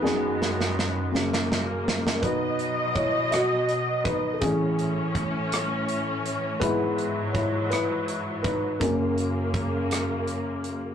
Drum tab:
HH |------------|x-x-x-x-x-x-|x-x-x-x-x-x-|x-x-x-x-x-x-|
SD |o-ooo-ooo-oo|------r-----|------r-----|----r-r-----|
BD |------------|o---o-----o-|o---o-------|o---o-----o-|

HH |x-x-x-x-x-x-|
SD |------r-----|
BD |o---o-------|